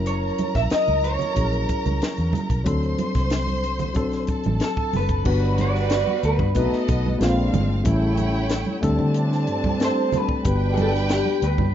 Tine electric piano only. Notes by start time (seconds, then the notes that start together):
Already playing: F#3 C#4 E4 A#4
1.34 F#3 C#4 E4 G#4
1.45 A#4
2.64 F#3 C4 D4 A4
3.94 F#3 C4 D4 A4
5.24 G3 B3 D4 F#4 B4
6.54 A3 B3 C4 F#4 B4
6.62 D#4
7.18 G#3 A#3 C4 D4 F4
7.83 G3 A3 C#4 E4 A4
8.81 G3 A3 C4 D4 A4
9.79 G3 A3 C4 D4 A4
10.44 G3 B3 D4 G4 B4